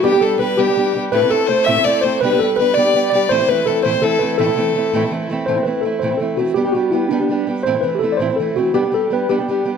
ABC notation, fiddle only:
X:1
M:6/8
L:1/8
Q:3/8=110
K:Am
V:1 name="Fiddle"
G A B G2 z | B A c e d c | B2 B d2 d | c B A c A2 |
A4 z2 | z6 | z6 | z6 |
z6 |]